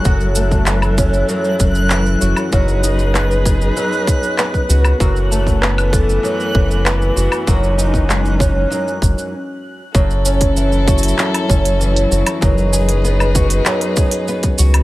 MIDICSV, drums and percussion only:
0, 0, Header, 1, 2, 480
1, 0, Start_track
1, 0, Tempo, 618557
1, 39, Time_signature, 4, 2, 24, 8
1, 11508, End_track
2, 0, Start_track
2, 0, Title_t, "Drums"
2, 37, Note_on_c, 9, 69, 39
2, 40, Note_on_c, 9, 36, 106
2, 115, Note_off_c, 9, 69, 0
2, 118, Note_off_c, 9, 36, 0
2, 159, Note_on_c, 9, 69, 20
2, 237, Note_off_c, 9, 69, 0
2, 274, Note_on_c, 9, 69, 78
2, 351, Note_off_c, 9, 69, 0
2, 399, Note_on_c, 9, 36, 60
2, 399, Note_on_c, 9, 69, 30
2, 477, Note_off_c, 9, 36, 0
2, 477, Note_off_c, 9, 69, 0
2, 513, Note_on_c, 9, 39, 77
2, 515, Note_on_c, 9, 69, 41
2, 590, Note_off_c, 9, 39, 0
2, 593, Note_off_c, 9, 69, 0
2, 638, Note_on_c, 9, 77, 59
2, 641, Note_on_c, 9, 69, 20
2, 716, Note_off_c, 9, 77, 0
2, 718, Note_off_c, 9, 69, 0
2, 760, Note_on_c, 9, 36, 97
2, 760, Note_on_c, 9, 69, 76
2, 837, Note_off_c, 9, 69, 0
2, 838, Note_off_c, 9, 36, 0
2, 881, Note_on_c, 9, 69, 28
2, 958, Note_off_c, 9, 69, 0
2, 1000, Note_on_c, 9, 69, 41
2, 1078, Note_off_c, 9, 69, 0
2, 1120, Note_on_c, 9, 69, 20
2, 1197, Note_off_c, 9, 69, 0
2, 1239, Note_on_c, 9, 69, 74
2, 1240, Note_on_c, 9, 36, 87
2, 1316, Note_off_c, 9, 69, 0
2, 1318, Note_off_c, 9, 36, 0
2, 1358, Note_on_c, 9, 69, 30
2, 1435, Note_off_c, 9, 69, 0
2, 1475, Note_on_c, 9, 39, 85
2, 1477, Note_on_c, 9, 69, 40
2, 1552, Note_off_c, 9, 39, 0
2, 1555, Note_off_c, 9, 69, 0
2, 1600, Note_on_c, 9, 69, 20
2, 1677, Note_off_c, 9, 69, 0
2, 1718, Note_on_c, 9, 69, 73
2, 1796, Note_off_c, 9, 69, 0
2, 1835, Note_on_c, 9, 77, 63
2, 1838, Note_on_c, 9, 69, 30
2, 1913, Note_off_c, 9, 77, 0
2, 1915, Note_off_c, 9, 69, 0
2, 1957, Note_on_c, 9, 69, 39
2, 1960, Note_on_c, 9, 36, 100
2, 2035, Note_off_c, 9, 69, 0
2, 2038, Note_off_c, 9, 36, 0
2, 2081, Note_on_c, 9, 69, 20
2, 2158, Note_off_c, 9, 69, 0
2, 2200, Note_on_c, 9, 69, 75
2, 2277, Note_off_c, 9, 69, 0
2, 2319, Note_on_c, 9, 69, 28
2, 2397, Note_off_c, 9, 69, 0
2, 2442, Note_on_c, 9, 39, 84
2, 2445, Note_on_c, 9, 69, 40
2, 2520, Note_off_c, 9, 39, 0
2, 2523, Note_off_c, 9, 69, 0
2, 2569, Note_on_c, 9, 69, 21
2, 2646, Note_off_c, 9, 69, 0
2, 2681, Note_on_c, 9, 36, 92
2, 2684, Note_on_c, 9, 69, 71
2, 2758, Note_off_c, 9, 36, 0
2, 2762, Note_off_c, 9, 69, 0
2, 2805, Note_on_c, 9, 69, 27
2, 2882, Note_off_c, 9, 69, 0
2, 2923, Note_on_c, 9, 69, 41
2, 3001, Note_off_c, 9, 69, 0
2, 3046, Note_on_c, 9, 69, 20
2, 3124, Note_off_c, 9, 69, 0
2, 3162, Note_on_c, 9, 36, 96
2, 3167, Note_on_c, 9, 69, 64
2, 3239, Note_off_c, 9, 36, 0
2, 3245, Note_off_c, 9, 69, 0
2, 3284, Note_on_c, 9, 69, 31
2, 3361, Note_off_c, 9, 69, 0
2, 3400, Note_on_c, 9, 39, 86
2, 3403, Note_on_c, 9, 69, 42
2, 3478, Note_off_c, 9, 39, 0
2, 3480, Note_off_c, 9, 69, 0
2, 3523, Note_on_c, 9, 36, 52
2, 3526, Note_on_c, 9, 69, 20
2, 3600, Note_off_c, 9, 36, 0
2, 3604, Note_off_c, 9, 69, 0
2, 3645, Note_on_c, 9, 69, 80
2, 3722, Note_off_c, 9, 69, 0
2, 3760, Note_on_c, 9, 77, 73
2, 3763, Note_on_c, 9, 69, 30
2, 3837, Note_off_c, 9, 77, 0
2, 3840, Note_off_c, 9, 69, 0
2, 3882, Note_on_c, 9, 36, 98
2, 3886, Note_on_c, 9, 69, 40
2, 3959, Note_off_c, 9, 36, 0
2, 3964, Note_off_c, 9, 69, 0
2, 4006, Note_on_c, 9, 69, 20
2, 4084, Note_off_c, 9, 69, 0
2, 4128, Note_on_c, 9, 69, 74
2, 4206, Note_off_c, 9, 69, 0
2, 4242, Note_on_c, 9, 36, 59
2, 4248, Note_on_c, 9, 69, 28
2, 4319, Note_off_c, 9, 36, 0
2, 4325, Note_off_c, 9, 69, 0
2, 4366, Note_on_c, 9, 39, 86
2, 4443, Note_off_c, 9, 39, 0
2, 4487, Note_on_c, 9, 77, 61
2, 4489, Note_on_c, 9, 69, 21
2, 4564, Note_off_c, 9, 77, 0
2, 4567, Note_off_c, 9, 69, 0
2, 4601, Note_on_c, 9, 36, 97
2, 4605, Note_on_c, 9, 69, 70
2, 4679, Note_off_c, 9, 36, 0
2, 4683, Note_off_c, 9, 69, 0
2, 4729, Note_on_c, 9, 69, 27
2, 4806, Note_off_c, 9, 69, 0
2, 4846, Note_on_c, 9, 69, 43
2, 4924, Note_off_c, 9, 69, 0
2, 4968, Note_on_c, 9, 69, 19
2, 5045, Note_off_c, 9, 69, 0
2, 5081, Note_on_c, 9, 36, 92
2, 5159, Note_off_c, 9, 36, 0
2, 5207, Note_on_c, 9, 69, 29
2, 5285, Note_off_c, 9, 69, 0
2, 5322, Note_on_c, 9, 39, 94
2, 5324, Note_on_c, 9, 69, 42
2, 5399, Note_off_c, 9, 39, 0
2, 5402, Note_off_c, 9, 69, 0
2, 5446, Note_on_c, 9, 69, 18
2, 5524, Note_off_c, 9, 69, 0
2, 5563, Note_on_c, 9, 69, 77
2, 5641, Note_off_c, 9, 69, 0
2, 5679, Note_on_c, 9, 77, 72
2, 5682, Note_on_c, 9, 69, 28
2, 5757, Note_off_c, 9, 77, 0
2, 5759, Note_off_c, 9, 69, 0
2, 5800, Note_on_c, 9, 36, 101
2, 5802, Note_on_c, 9, 69, 42
2, 5878, Note_off_c, 9, 36, 0
2, 5879, Note_off_c, 9, 69, 0
2, 5925, Note_on_c, 9, 69, 20
2, 6003, Note_off_c, 9, 69, 0
2, 6043, Note_on_c, 9, 69, 77
2, 6121, Note_off_c, 9, 69, 0
2, 6159, Note_on_c, 9, 36, 60
2, 6166, Note_on_c, 9, 69, 28
2, 6237, Note_off_c, 9, 36, 0
2, 6244, Note_off_c, 9, 69, 0
2, 6284, Note_on_c, 9, 39, 86
2, 6287, Note_on_c, 9, 69, 37
2, 6362, Note_off_c, 9, 39, 0
2, 6364, Note_off_c, 9, 69, 0
2, 6404, Note_on_c, 9, 69, 21
2, 6482, Note_off_c, 9, 69, 0
2, 6520, Note_on_c, 9, 36, 100
2, 6527, Note_on_c, 9, 69, 69
2, 6597, Note_off_c, 9, 36, 0
2, 6605, Note_off_c, 9, 69, 0
2, 6765, Note_on_c, 9, 69, 43
2, 6842, Note_off_c, 9, 69, 0
2, 6890, Note_on_c, 9, 69, 21
2, 6967, Note_off_c, 9, 69, 0
2, 6999, Note_on_c, 9, 36, 87
2, 7008, Note_on_c, 9, 69, 66
2, 7077, Note_off_c, 9, 36, 0
2, 7085, Note_off_c, 9, 69, 0
2, 7126, Note_on_c, 9, 69, 30
2, 7204, Note_off_c, 9, 69, 0
2, 7718, Note_on_c, 9, 36, 118
2, 7721, Note_on_c, 9, 69, 43
2, 7796, Note_off_c, 9, 36, 0
2, 7798, Note_off_c, 9, 69, 0
2, 7841, Note_on_c, 9, 69, 21
2, 7919, Note_off_c, 9, 69, 0
2, 7957, Note_on_c, 9, 69, 86
2, 8034, Note_off_c, 9, 69, 0
2, 8076, Note_on_c, 9, 46, 52
2, 8079, Note_on_c, 9, 36, 64
2, 8079, Note_on_c, 9, 69, 32
2, 8154, Note_off_c, 9, 46, 0
2, 8156, Note_off_c, 9, 69, 0
2, 8157, Note_off_c, 9, 36, 0
2, 8199, Note_on_c, 9, 69, 43
2, 8277, Note_off_c, 9, 69, 0
2, 8321, Note_on_c, 9, 69, 23
2, 8399, Note_off_c, 9, 69, 0
2, 8440, Note_on_c, 9, 36, 107
2, 8442, Note_on_c, 9, 69, 80
2, 8517, Note_off_c, 9, 36, 0
2, 8520, Note_off_c, 9, 69, 0
2, 8520, Note_on_c, 9, 69, 61
2, 8560, Note_on_c, 9, 46, 55
2, 8563, Note_off_c, 9, 69, 0
2, 8563, Note_on_c, 9, 69, 33
2, 8598, Note_off_c, 9, 69, 0
2, 8598, Note_on_c, 9, 69, 50
2, 8638, Note_off_c, 9, 46, 0
2, 8676, Note_off_c, 9, 69, 0
2, 8679, Note_on_c, 9, 39, 76
2, 8681, Note_on_c, 9, 69, 45
2, 8756, Note_off_c, 9, 39, 0
2, 8759, Note_off_c, 9, 69, 0
2, 8803, Note_on_c, 9, 46, 50
2, 8803, Note_on_c, 9, 77, 57
2, 8806, Note_on_c, 9, 69, 23
2, 8881, Note_off_c, 9, 46, 0
2, 8881, Note_off_c, 9, 77, 0
2, 8884, Note_off_c, 9, 69, 0
2, 8921, Note_on_c, 9, 36, 106
2, 8928, Note_on_c, 9, 69, 78
2, 8998, Note_off_c, 9, 36, 0
2, 9006, Note_off_c, 9, 69, 0
2, 9044, Note_on_c, 9, 46, 56
2, 9046, Note_on_c, 9, 69, 32
2, 9121, Note_off_c, 9, 46, 0
2, 9124, Note_off_c, 9, 69, 0
2, 9164, Note_on_c, 9, 69, 42
2, 9242, Note_off_c, 9, 69, 0
2, 9285, Note_on_c, 9, 46, 44
2, 9287, Note_on_c, 9, 69, 19
2, 9362, Note_off_c, 9, 46, 0
2, 9365, Note_off_c, 9, 69, 0
2, 9403, Note_on_c, 9, 69, 79
2, 9481, Note_off_c, 9, 69, 0
2, 9518, Note_on_c, 9, 46, 51
2, 9518, Note_on_c, 9, 77, 69
2, 9520, Note_on_c, 9, 69, 33
2, 9595, Note_off_c, 9, 46, 0
2, 9595, Note_off_c, 9, 77, 0
2, 9598, Note_off_c, 9, 69, 0
2, 9638, Note_on_c, 9, 69, 47
2, 9640, Note_on_c, 9, 36, 117
2, 9716, Note_off_c, 9, 69, 0
2, 9718, Note_off_c, 9, 36, 0
2, 9761, Note_on_c, 9, 69, 23
2, 9839, Note_off_c, 9, 69, 0
2, 9880, Note_on_c, 9, 69, 87
2, 9957, Note_off_c, 9, 69, 0
2, 10000, Note_on_c, 9, 46, 58
2, 10002, Note_on_c, 9, 69, 34
2, 10077, Note_off_c, 9, 46, 0
2, 10080, Note_off_c, 9, 69, 0
2, 10125, Note_on_c, 9, 69, 40
2, 10202, Note_off_c, 9, 69, 0
2, 10245, Note_on_c, 9, 77, 60
2, 10248, Note_on_c, 9, 69, 23
2, 10323, Note_off_c, 9, 77, 0
2, 10326, Note_off_c, 9, 69, 0
2, 10360, Note_on_c, 9, 36, 102
2, 10361, Note_on_c, 9, 69, 81
2, 10438, Note_off_c, 9, 36, 0
2, 10439, Note_off_c, 9, 69, 0
2, 10477, Note_on_c, 9, 46, 57
2, 10480, Note_on_c, 9, 69, 33
2, 10555, Note_off_c, 9, 46, 0
2, 10558, Note_off_c, 9, 69, 0
2, 10596, Note_on_c, 9, 39, 84
2, 10599, Note_on_c, 9, 69, 50
2, 10674, Note_off_c, 9, 39, 0
2, 10677, Note_off_c, 9, 69, 0
2, 10719, Note_on_c, 9, 46, 46
2, 10722, Note_on_c, 9, 69, 23
2, 10796, Note_off_c, 9, 46, 0
2, 10799, Note_off_c, 9, 69, 0
2, 10835, Note_on_c, 9, 69, 79
2, 10840, Note_on_c, 9, 36, 103
2, 10912, Note_off_c, 9, 69, 0
2, 10917, Note_off_c, 9, 36, 0
2, 10953, Note_on_c, 9, 46, 59
2, 10955, Note_on_c, 9, 69, 38
2, 11030, Note_off_c, 9, 46, 0
2, 11033, Note_off_c, 9, 69, 0
2, 11079, Note_on_c, 9, 69, 46
2, 11157, Note_off_c, 9, 69, 0
2, 11197, Note_on_c, 9, 46, 43
2, 11200, Note_on_c, 9, 36, 66
2, 11200, Note_on_c, 9, 69, 24
2, 11275, Note_off_c, 9, 46, 0
2, 11278, Note_off_c, 9, 36, 0
2, 11278, Note_off_c, 9, 69, 0
2, 11317, Note_on_c, 9, 69, 91
2, 11394, Note_off_c, 9, 69, 0
2, 11438, Note_on_c, 9, 46, 51
2, 11438, Note_on_c, 9, 77, 68
2, 11508, Note_off_c, 9, 46, 0
2, 11508, Note_off_c, 9, 77, 0
2, 11508, End_track
0, 0, End_of_file